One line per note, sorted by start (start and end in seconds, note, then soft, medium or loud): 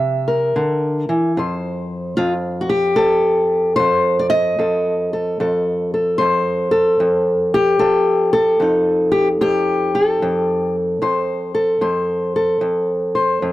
0.00 0.53 C3 medium
0.00 1.31 E5 medium
0.28 1.32 A#4 medium
0.56 1.08 D3 medium
1.09 1.35 E3 medium
1.37 2.17 F2 medium
1.37 2.69 C5 soft
2.17 2.98 F2 medium
2.17 2.33 F4 medium
2.61 2.69 F#4 medium
2.69 3.75 G4 medium
2.96 3.79 F2 medium
2.96 4.57 A4 loud
3.76 4.58 F2 medium
3.76 4.19 C5 loud
4.19 4.29 D5 medium
4.30 6.18 D#5 loud
4.59 5.40 F2 medium
4.59 5.13 A4 soft
5.13 5.40 A4 soft
5.40 6.20 F2 medium
5.40 5.93 A4 soft
5.94 6.71 A4 soft
6.18 7.00 F2 medium
6.18 7.52 C5 medium
6.71 7.78 A4 medium
7.00 7.81 F2 medium
7.54 8.61 G4 loud
7.79 8.59 F2 medium
7.79 8.32 A4 medium
8.33 9.94 A4 medium
8.60 9.41 F2 medium
8.60 10.99 D#4 soft
9.12 9.28 G4 medium
9.41 10.21 F2 medium
9.41 10.74 G4 medium
9.95 11.53 A4 medium
10.22 11.00 F2 medium
11.02 11.80 F2 medium
11.02 11.80 C5 medium
11.55 12.35 A4 medium
11.81 12.60 F2 medium
11.81 13.14 C5 medium
12.36 13.53 A4 medium
12.61 13.41 F2 medium
13.15 13.53 C5 medium
13.42 13.53 F2 medium